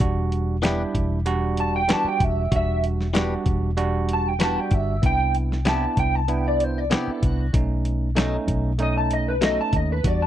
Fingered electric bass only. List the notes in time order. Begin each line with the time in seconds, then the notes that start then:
0.00 E1
0.95 E1
2.04 muted fingered electric bass stroke
2.20 E1
2.52 E1
3.46 E1
4.71 G1
5.03 C2
5.97 C2
7.08 muted fingered electric bass stroke
7.23 C2
7.54 B1
8.47 B1
9.73 D#2
10.04 E2